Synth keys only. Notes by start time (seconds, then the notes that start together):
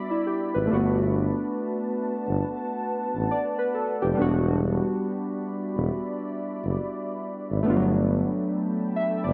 Already playing: G3 B3 D4
0.11 E4
0.27 G4
0.54 B4
0.67 A3 A#3
0.71 D4 F#4
0.75 B3
3.31 D5
3.59 B4
3.74 A4
4.02 G4
4.15 G3 B3
4.19 D4 F#4
7.63 A3 B3
7.67 D4 F4
7.76 F#3
8.96 E5
9.24 D5